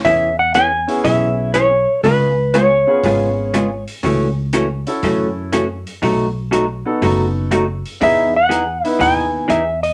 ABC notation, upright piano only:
X:1
M:4/4
L:1/8
Q:"Swing" 1/4=121
K:E
V:1 name="Upright piano"
z3 [B,CEG]3 z2 | z3 [B,C^EG]3 z2 | z3 [CEFA]3 z2 | z3 [B,DFA]3 z2 |
[B,DEG] z2 [B,DEB]3 z2 |]